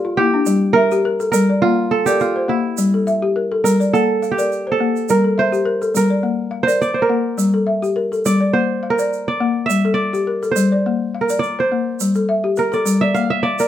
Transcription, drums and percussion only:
0.46 shaker
0.91 shaker
1.20 shaker
1.33 shaker
2.07 shaker
2.20 shaker
2.77 shaker
3.07 shaker
3.66 shaker
3.81 shaker
3.95 shaker
4.23 shaker
4.39 shaker
4.52 shaker
4.96 shaker
5.09 shaker
5.54 shaker
5.82 shaker
5.95 shaker
6.68 shaker
6.82 shaker
7.38 shaker
7.84 shaker
8.13 shaker
8.26 shaker
8.99 shaker
9.13 shaker
9.70 shaker
10.14 shaker
10.43 shaker
10.56 shaker
11.29 shaker
11.43 shaker
12.00 shaker
12.15 shaker
12.56 shaker
12.73 shaker
12.86 shaker
13.15 shaker
13.59 shaker

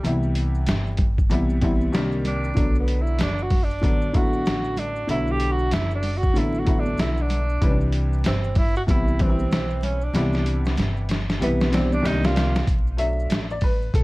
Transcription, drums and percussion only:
0.05 closed hi-hat, maracas
0.23 maracas
0.35 closed hi-hat, maracas
0.55 maracas
0.66 snare, closed hi-hat, low conga, maracas
0.87 maracas
0.97 kick, closed hi-hat, low conga, maracas
1.18 kick, maracas
1.30 closed hi-hat, maracas
1.50 maracas
1.62 kick, closed hi-hat, maracas
1.81 high conga, maracas
1.93 snare, closed hi-hat, maracas
2.12 maracas
2.25 closed hi-hat, low conga, maracas
2.44 maracas
2.57 kick, closed hi-hat, maracas
2.75 maracas
2.88 closed hi-hat, maracas
3.07 maracas
3.19 snare, closed hi-hat, low conga, maracas
3.38 maracas
3.50 kick, open hi-hat, low conga, maracas
3.70 maracas
3.83 kick, closed hi-hat, maracas
4.02 maracas
4.14 kick, closed hi-hat, maracas
4.33 high conga, maracas
4.45 snare, closed hi-hat, maracas
4.64 maracas
4.77 closed hi-hat, low conga, maracas
4.96 maracas
5.09 closed hi-hat, maracas
5.27 maracas
5.40 closed hi-hat, maracas
5.59 maracas
5.71 snare, closed hi-hat, low conga, maracas
5.91 maracas
6.03 open hi-hat, low conga, maracas
6.23 kick, maracas
6.35 closed hi-hat, maracas
6.54 maracas
6.66 kick, closed hi-hat, maracas
6.86 high conga, maracas
6.98 snare, closed hi-hat, maracas
7.17 maracas
7.30 closed hi-hat, low conga, maracas
7.49 maracas
7.62 kick, closed hi-hat, maracas
7.81 maracas
7.92 closed hi-hat, maracas
8.13 maracas
8.24 snare, closed hi-hat, low conga, maracas
8.44 maracas
8.55 kick, open hi-hat, low conga, maracas
8.76 maracas
8.88 kick, closed hi-hat, maracas
9.08 maracas
9.19 kick, closed hi-hat, maracas
9.39 high conga, maracas
9.51 snare, closed hi-hat, maracas
9.70 maracas
9.82 closed hi-hat, low conga, maracas
10.01 maracas
10.14 snare, closed hi-hat, maracas
10.33 snare, maracas
10.46 closed hi-hat, high conga, maracas
10.65 snare, maracas
10.77 snare, closed hi-hat, low conga, maracas
10.97 maracas
11.09 snare, closed hi-hat, low conga, maracas
11.29 snare, maracas
11.42 closed hi-hat, high conga, maracas
11.60 snare, high conga, maracas
11.73 snare, closed hi-hat, maracas
11.92 high conga, maracas
12.05 snare, closed hi-hat, maracas
12.24 snare, high conga, maracas
12.36 snare, closed hi-hat, low conga, maracas
12.55 snare, maracas
12.67 kick, closed hi-hat, maracas
12.87 maracas
12.98 closed hi-hat, maracas
13.19 maracas
13.30 snare, closed hi-hat, low conga, maracas
13.50 maracas
13.61 kick, open hi-hat, low conga, maracas
13.82 maracas
13.94 kick, closed hi-hat, maracas

